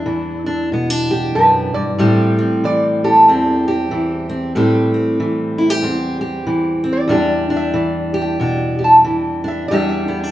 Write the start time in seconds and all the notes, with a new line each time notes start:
Already playing: E2 G3 D4 E4
0.06 E3
0.46 D4
0.72 B2 B3
0.90 D4
1.11 G4
1.35 F#2 B4
1.74 G2 D5
1.98 A2 G3 C4 G4
2.39 C4
2.64 E3 D5
3.04 G4 A4
3.28 E2 C4
3.68 G4
3.91 E3
4.29 C4
4.55 A2 G3 C4 G4
4.94 C4
5.20 E3
5.58 E4
5.70 G4
5.82 E2 C4
6.21 G4
6.47 E3
6.84 C4
6.93 D5
7.08 E2 G3 D4 G4
7.50 D4
7.56 E5
7.74 E3
8.14 G4
8.22 G5
8.40 B2 D4
8.79 G4
8.84 A5
9.04 E3
9.44 D4 E5
9.68 E2 G3 D4 E5
9.73 G4
9.89 E5
10.08 B3
10.23 D4